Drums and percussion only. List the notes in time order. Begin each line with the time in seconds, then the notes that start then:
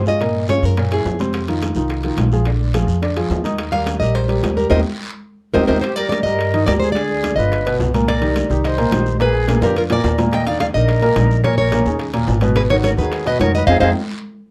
0.06 high conga, short guiro
0.20 high bongo, high conga, high timbale, long guiro
0.35 high bongo, high conga
0.48 high bongo, high conga, high timbale, low timbale, short guiro
0.63 high conga, short guiro
0.77 high bongo, high conga, high timbale, long guiro
0.91 high bongo, high conga, high timbale
1.05 high bongo, low bongo, high conga, low timbale, short guiro
1.19 high conga, high timbale, short guiro
1.33 high bongo, high conga, high timbale, long guiro
1.48 high bongo, high conga, high timbale
1.61 high bongo, high conga, high timbale, low timbale, short guiro
1.75 high bongo, short guiro
1.88 high bongo, high conga, high timbale, long guiro
2.04 high bongo, high conga, high timbale
2.17 high bongo, low bongo, high conga, high timbale, low timbale, short guiro
2.32 short guiro
2.45 high bongo, high conga, high timbale, long guiro
2.60 high bongo, high conga
2.74 high bongo, high conga, high timbale, low timbale, short guiro
2.88 high bongo, short guiro
3.02 high bongo, high conga, high timbale, long guiro
3.16 high conga, high timbale
3.30 high bongo, low bongo, high conga, low timbale, short guiro
3.44 high conga, high timbale, short guiro
3.58 high bongo, high conga, high timbale, long guiro
3.73 high bongo, high conga, high timbale
3.86 high bongo, high conga, high timbale, low timbale, short guiro
4.01 high bongo, short guiro
4.15 high bongo, high conga, high timbale, long guiro
4.28 high bongo, high conga, high timbale
4.43 high bongo, low bongo, high conga, high timbale, low timbale, short guiro
4.58 short guiro
4.70 low bongo, high conga, high timbale, long guiro
5.54 low bongo, high conga, high timbale, long guiro
5.69 low bongo, high conga, high timbale, long guiro
5.82 high bongo, high conga, high timbale, long guiro
5.97 high bongo, high conga, high timbale
6.11 high bongo, high conga, high timbale, low timbale, short guiro
6.26 high bongo, short guiro
6.39 high bongo, high conga, high timbale, long guiro
6.54 high conga, high timbale
6.68 high bongo, low bongo, high conga, high timbale, low timbale, short guiro
6.82 high conga, short guiro
6.95 high bongo, high conga, high timbale, long guiro
7.09 high bongo, high conga
7.23 high bongo, high conga, high timbale, low timbale, short guiro
7.38 high bongo, high conga, short guiro
7.52 high bongo, high conga, high timbale, long guiro
7.66 high bongo, high conga, high timbale
7.80 high bongo, low bongo, high conga, low timbale, short guiro
7.94 high conga, high timbale, short guiro
8.08 high bongo, high conga, high timbale, long guiro
8.22 high bongo, high conga, high timbale
8.36 high bongo, high conga, high timbale, low timbale, short guiro
8.50 high bongo, short guiro
8.64 high bongo, high conga, high timbale, long guiro
8.78 high bongo, high conga, high timbale
8.92 high bongo, low bongo, high conga, high timbale, low timbale, short guiro
9.06 high conga, short guiro
9.20 high bongo, high timbale, long guiro
9.34 high bongo, high conga
9.48 high bongo, high conga, high timbale, low timbale, short guiro
9.62 low bongo, high conga, short guiro
9.76 high conga, high timbale, long guiro
9.90 low bongo, high conga, high timbale
10.04 low bongo, high conga, low timbale, short guiro
10.18 low bongo, high conga, high timbale, short guiro
10.31 high bongo, high conga, high timbale, long guiro
10.46 high bongo, high conga, high timbale
10.60 high bongo, high conga, high timbale, low timbale, short guiro
10.74 high bongo, short guiro
10.88 high bongo, high conga, high timbale, long guiro
11.02 high bongo, high conga, high timbale
11.16 high bongo, low bongo, high conga, high timbale, low timbale, short guiro
11.31 short guiro
11.44 high bongo, high conga, high timbale, long guiro
11.58 high bongo
11.72 high bongo, high conga, high timbale, low timbale, short guiro
11.86 high bongo, high conga, short guiro
11.99 high bongo, high conga, high timbale, long guiro
12.14 high bongo, high conga, high timbale
12.27 high bongo, low bongo, high conga, low timbale, short guiro
12.41 high conga, high timbale, short guiro
12.56 high bongo, high conga, high timbale, long guiro
12.70 high bongo, high conga, high timbale
12.84 high bongo, high conga, high timbale, low timbale, short guiro
12.98 high bongo, short guiro
13.12 high bongo, high conga, high timbale, long guiro
13.26 high bongo, high conga, high timbale
13.40 high bongo, low bongo, high conga, high timbale, low timbale, short guiro
13.54 high conga, short guiro
13.68 low bongo, high conga, high timbale, long guiro
13.81 low bongo, high conga, high timbale, long guiro